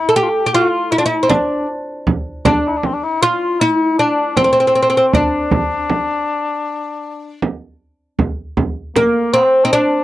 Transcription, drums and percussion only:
1.30 frame drum
2.07 frame drum
2.45 frame drum
2.83 frame drum
4.37 frame drum
5.13 frame drum
5.51 frame drum
5.90 frame drum
7.42 frame drum
8.19 frame drum
8.57 frame drum
8.96 frame drum

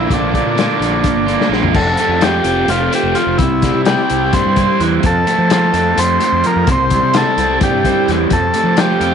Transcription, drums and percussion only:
0.10 kick, closed hi-hat
0.34 kick, closed hi-hat
0.58 snare, closed hi-hat
0.82 snare, closed hi-hat
1.04 kick, closed hi-hat
1.28 closed hi-hat
1.41 snare
1.53 snare
1.63 floor tom
1.74 kick, crash
1.97 closed hi-hat
2.21 snare, closed hi-hat
2.44 closed hi-hat
2.68 closed hi-hat
2.93 closed hi-hat
3.15 closed hi-hat
3.39 kick, closed hi-hat
3.62 kick, snare, closed hi-hat
3.85 snare, closed hi-hat
4.10 closed hi-hat
4.33 kick, closed hi-hat
4.56 kick, closed hi-hat
4.80 closed hi-hat
5.03 kick, closed hi-hat
5.27 closed hi-hat
5.50 snare, closed hi-hat
5.74 closed hi-hat
5.98 closed hi-hat
6.20 closed hi-hat
6.44 closed hi-hat
6.67 kick, closed hi-hat
6.90 kick, closed hi-hat
7.14 snare, closed hi-hat
7.38 closed hi-hat
7.61 kick, closed hi-hat
7.85 kick, closed hi-hat
8.08 snare, closed hi-hat
8.30 kick, closed hi-hat
8.54 closed hi-hat
8.77 snare, closed hi-hat
9.01 closed hi-hat

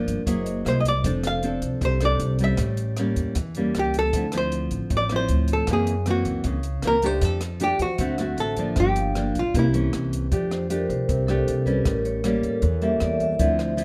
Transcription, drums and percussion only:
0.07 kick, closed hi-hat
0.27 kick, closed hi-hat
0.46 closed hi-hat
0.66 cross-stick, closed hi-hat
0.85 kick, closed hi-hat
1.04 kick, closed hi-hat
1.24 cross-stick, closed hi-hat
1.43 closed hi-hat
1.62 kick, closed hi-hat
1.81 kick, closed hi-hat
2.01 cross-stick, closed hi-hat
2.20 closed hi-hat
2.39 kick, closed hi-hat
2.57 kick, cross-stick, closed hi-hat
2.77 closed hi-hat
2.97 cross-stick, closed hi-hat
3.16 kick, closed hi-hat
3.35 kick, closed hi-hat
3.55 closed hi-hat
3.75 cross-stick, closed hi-hat
3.94 kick, closed hi-hat
4.13 kick, closed hi-hat
4.32 cross-stick, closed hi-hat
4.52 closed hi-hat
4.71 kick, closed hi-hat
4.90 kick, closed hi-hat
5.09 cross-stick, closed hi-hat
5.29 closed hi-hat
5.48 kick, closed hi-hat
5.67 kick, cross-stick, closed hi-hat
5.87 closed hi-hat
6.06 cross-stick, closed hi-hat
6.25 kick, closed hi-hat
6.44 kick, closed hi-hat
6.63 closed hi-hat
6.82 cross-stick, closed hi-hat
7.02 kick, closed hi-hat
7.21 kick, closed hi-hat
7.41 cross-stick, closed hi-hat
7.60 closed hi-hat
7.79 kick, closed hi-hat
7.98 kick, closed hi-hat
8.18 cross-stick, closed hi-hat
8.38 closed hi-hat
8.57 kick, closed hi-hat
8.76 kick, cross-stick, closed hi-hat
8.96 closed hi-hat
9.15 cross-stick, closed hi-hat
9.35 kick, closed hi-hat
9.54 kick, closed hi-hat
9.74 closed hi-hat
9.93 cross-stick, closed hi-hat
10.12 kick, closed hi-hat
10.32 kick, closed hi-hat
10.51 cross-stick, closed hi-hat
10.70 closed hi-hat
10.90 kick, closed hi-hat
11.09 kick, closed hi-hat
11.28 cross-stick, closed hi-hat
11.48 closed hi-hat
11.66 kick, closed hi-hat
11.85 kick, cross-stick, closed hi-hat
12.05 closed hi-hat
12.24 cross-stick, closed hi-hat
12.43 kick, closed hi-hat
12.62 kick, closed hi-hat
12.82 closed hi-hat
13.00 cross-stick, closed hi-hat
13.20 kick, closed hi-hat
13.39 kick, closed hi-hat
13.59 cross-stick, closed hi-hat
13.78 closed hi-hat

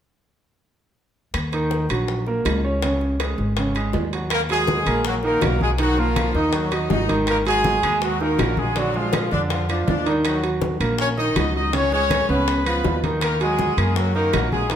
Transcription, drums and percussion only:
1.34 high bongo, high timbale, claves
1.52 high bongo, high timbale
1.71 high bongo, low timbale
1.89 high bongo, high timbale, claves
2.08 high bongo
2.27 high bongo
2.45 high bongo, low bongo, high timbale, low timbale, claves
2.82 high bongo, high timbale
3.01 high bongo
3.20 high bongo, high timbale, low timbale, claves
3.38 high bongo
3.57 high bongo, high timbale
3.75 high bongo, high timbale, claves
3.93 high bongo, low bongo, low timbale
4.13 high timbale
4.30 high bongo, high conga, high timbale, claves
4.49 high bongo, high conga, high timbale
4.67 high bongo, high conga, low timbale
4.86 high bongo, high conga, high timbale, claves
5.05 high bongo, high conga
5.23 high bongo, high conga
5.42 high bongo, low bongo, high conga, high timbale, low timbale, claves
5.61 high conga
5.78 high bongo, high conga, high timbale
5.97 high bongo, high conga
6.16 high bongo, high conga, high timbale, low timbale, claves
6.35 high bongo, high conga
6.53 high bongo, high conga, high timbale
6.71 high bongo, high conga, high timbale, claves
6.90 high bongo, low bongo, high conga, low timbale
7.09 high conga, high timbale
7.27 high bongo, high conga, high timbale, claves
7.45 high bongo, high conga, high timbale
7.64 high bongo, high conga, low timbale
7.83 high bongo, high conga, high timbale, claves
8.02 high bongo, high conga
8.20 high bongo, high conga
8.39 high bongo, low bongo, high conga, high timbale, low timbale, claves
8.57 high conga
8.76 high bongo, high conga, high timbale
8.94 high bongo, high conga
9.13 high bongo, high conga, high timbale, low timbale, claves
9.31 high bongo, high conga
9.50 high bongo, high conga, high timbale
9.69 high bongo, high conga, high timbale, claves
9.88 high bongo, low bongo, high conga, low timbale
10.06 high timbale
10.25 high bongo, high conga, high timbale, claves
10.43 high bongo, high conga, high timbale
10.62 high bongo, high conga, low timbale
10.80 high bongo, high conga, high timbale, claves
10.99 high bongo, high conga
11.17 high bongo, high conga
11.36 high bongo, low bongo, high conga, high timbale, low timbale, claves
11.73 high bongo, high conga, high timbale
11.92 high bongo, high conga
12.11 high bongo, high conga, high timbale, low timbale, claves
12.29 high bongo, high conga
12.48 high bongo, high conga, high timbale
12.66 high bongo, high conga, high timbale, claves
12.84 high bongo, low bongo, high conga, low timbale
13.04 high conga, high timbale
13.21 high bongo, high conga, high timbale, claves
13.40 high bongo, high conga, high timbale
13.59 high bongo, high conga, low timbale
13.78 high bongo, high conga, high timbale, claves
13.96 high bongo, high conga
14.15 high bongo, high conga
14.33 high bongo, low bongo, high conga, high timbale, low timbale, claves
14.52 high conga
14.70 high bongo, high conga, high timbale

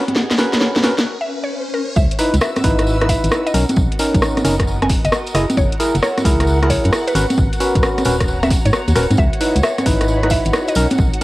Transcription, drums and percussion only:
0.08 closed hi-hat, high conga
0.16 snare
0.31 snare, closed hi-hat
0.38 snare, open hi-hat
0.53 snare, closed hi-hat
0.61 snare
0.76 snare, high conga
0.83 snare, open hi-hat
0.98 snare, closed hi-hat
1.96 kick, tambourine
2.11 closed hi-hat
2.19 open hi-hat, tambourine
2.34 closed hi-hat, tambourine
2.41 cross-stick, tambourine
2.56 cross-stick, closed hi-hat, tambourine, high conga
2.64 kick, open hi-hat, tambourine
2.79 cross-stick, closed hi-hat, tambourine
2.87 tambourine
3.02 cross-stick, closed hi-hat
3.09 kick, open hi-hat, tambourine
3.24 closed hi-hat, tambourine
3.32 cross-stick, tambourine
3.47 closed hi-hat, tambourine
3.54 open hi-hat, tambourine
3.69 closed hi-hat, tambourine, high conga
3.76 kick, tambourine
3.92 closed hi-hat
3.99 open hi-hat, tambourine
4.14 kick, closed hi-hat, tambourine
4.22 cross-stick, tambourine
4.37 cross-stick, closed hi-hat, tambourine, high conga
4.45 open hi-hat, tambourine
4.59 kick, cross-stick, closed hi-hat
4.67 tambourine
4.82 cross-stick, closed hi-hat, high conga
4.89 kick, open hi-hat, tambourine
5.05 closed hi-hat, tambourine
5.12 cross-stick, tambourine
5.27 closed hi-hat, tambourine
5.35 cross-stick, open hi-hat, tambourine
5.50 closed hi-hat, tambourine, high conga
5.57 kick, tambourine
5.72 closed hi-hat
5.80 open hi-hat, tambourine
5.95 closed hi-hat, tambourine
6.02 cross-stick, tambourine
6.17 cross-stick, closed hi-hat, tambourine, high conga
6.25 kick, open hi-hat, tambourine
6.40 cross-stick, closed hi-hat, tambourine
6.47 tambourine
6.63 cross-stick, closed hi-hat
6.70 kick, open hi-hat, tambourine
6.84 closed hi-hat, tambourine
6.93 cross-stick, tambourine
7.07 closed hi-hat, tambourine
7.15 open hi-hat, tambourine
7.30 closed hi-hat, tambourine, high conga
7.38 kick, tambourine
7.53 closed hi-hat, tambourine
7.60 open hi-hat, tambourine
7.75 kick, closed hi-hat, tambourine
7.83 cross-stick, tambourine
7.98 cross-stick, closed hi-hat, tambourine, high conga
8.05 open hi-hat, tambourine
8.20 kick, cross-stick, closed hi-hat, tambourine
8.28 tambourine
8.43 cross-stick, closed hi-hat, tambourine, high conga
8.50 kick, open hi-hat, tambourine
8.65 closed hi-hat, tambourine
8.73 cross-stick, tambourine
8.88 closed hi-hat, tambourine
8.96 cross-stick, open hi-hat, tambourine
9.11 closed hi-hat, tambourine, high conga
9.17 kick, tambourine
9.33 closed hi-hat
9.41 open hi-hat, tambourine
9.56 closed hi-hat, tambourine
9.63 cross-stick, tambourine
9.78 cross-stick, closed hi-hat, tambourine, high conga
9.86 kick, open hi-hat, tambourine
10.01 cross-stick, closed hi-hat, tambourine
10.08 tambourine
10.23 cross-stick, closed hi-hat
10.30 kick, open hi-hat, tambourine
10.45 closed hi-hat, tambourine
10.53 cross-stick, tambourine
10.68 closed hi-hat, tambourine
10.75 open hi-hat, tambourine
10.90 closed hi-hat, tambourine, high conga
10.98 kick, tambourine
11.14 closed hi-hat

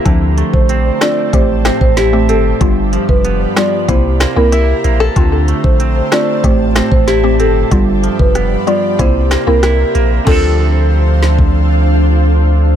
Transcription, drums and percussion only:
0.06 kick, closed hi-hat
0.38 closed hi-hat
0.54 kick
0.69 closed hi-hat
1.01 cross-stick, snare, closed hi-hat
1.33 kick, closed hi-hat
1.65 cross-stick, snare, closed hi-hat
1.81 kick
1.97 snare, closed hi-hat
2.29 closed hi-hat
2.61 kick, closed hi-hat
2.93 closed hi-hat
3.09 kick
3.25 closed hi-hat
3.56 cross-stick, snare, closed hi-hat
3.89 kick, closed hi-hat
4.20 cross-stick, snare, closed hi-hat
4.52 closed hi-hat
4.84 closed hi-hat
5.16 kick, closed hi-hat
5.48 closed hi-hat
5.64 kick
5.80 closed hi-hat
6.12 cross-stick, snare, closed hi-hat
6.44 kick, closed hi-hat
6.76 cross-stick, snare, closed hi-hat
6.92 kick
7.08 snare, closed hi-hat
7.40 closed hi-hat
7.71 kick, closed hi-hat
8.04 closed hi-hat
8.19 kick
8.35 cross-stick, closed hi-hat
8.67 closed hi-hat
8.99 kick, closed hi-hat
9.31 cross-stick, snare, closed hi-hat
9.63 cross-stick, snare, closed hi-hat
9.95 closed hi-hat
10.27 kick, crash
11.23 snare
11.39 kick

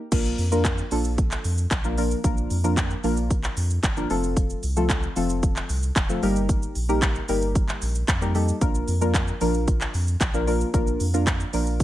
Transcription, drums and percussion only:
0.12 kick, closed hi-hat, crash, shaker
0.25 shaker
0.38 open hi-hat, shaker
0.52 shaker
0.65 kick, clap, closed hi-hat, shaker
0.78 shaker
0.91 open hi-hat, shaker
1.05 shaker
1.18 kick, closed hi-hat, shaker
1.31 clap, shaker
1.44 open hi-hat, shaker
1.58 shaker
1.71 kick, clap, closed hi-hat, shaker
1.84 shaker
1.98 open hi-hat, shaker
2.11 shaker
2.24 kick, closed hi-hat, shaker
2.37 shaker
2.50 open hi-hat, shaker
2.64 shaker
2.77 kick, clap, closed hi-hat, shaker
2.90 shaker
3.04 open hi-hat, shaker
3.17 shaker
3.30 kick, closed hi-hat, shaker
3.44 clap, shaker
3.57 open hi-hat, shaker
3.70 shaker
3.83 kick, clap, closed hi-hat, shaker
3.97 shaker
4.10 open hi-hat, shaker
4.23 shaker
4.37 kick, closed hi-hat, shaker
4.50 shaker
4.63 open hi-hat, shaker
4.76 shaker
4.89 kick, clap, closed hi-hat, shaker
5.03 shaker
5.16 open hi-hat, shaker
5.29 shaker
5.43 kick, closed hi-hat, shaker
5.56 clap, shaker
5.69 open hi-hat, shaker
5.83 shaker
5.96 kick, clap, closed hi-hat, shaker
6.09 shaker
6.23 open hi-hat, shaker
6.36 shaker
6.49 kick, closed hi-hat, shaker
6.63 shaker
6.75 open hi-hat, shaker
6.89 shaker
7.02 kick, clap, closed hi-hat, shaker
7.15 shaker
7.28 open hi-hat, shaker
7.42 shaker
7.55 kick, closed hi-hat, shaker
7.69 clap, shaker
7.82 open hi-hat, shaker
7.95 shaker
8.08 kick, clap, closed hi-hat, shaker
8.22 shaker
8.35 open hi-hat, shaker
8.48 shaker
8.61 kick, closed hi-hat, shaker
8.75 shaker
8.88 open hi-hat, shaker
9.01 shaker
9.14 kick, clap, closed hi-hat, shaker
9.28 shaker
9.41 open hi-hat, shaker
9.54 shaker
9.68 kick, closed hi-hat, shaker
9.81 clap, shaker
9.94 open hi-hat, shaker
10.08 shaker
10.21 kick, clap, closed hi-hat, shaker
10.34 shaker
10.48 open hi-hat, shaker
10.61 shaker
10.74 kick, closed hi-hat, shaker
10.87 shaker
11.00 open hi-hat, shaker
11.14 shaker
11.27 kick, clap, closed hi-hat, shaker
11.40 shaker
11.53 open hi-hat, shaker
11.66 shaker
11.80 kick, closed hi-hat, shaker

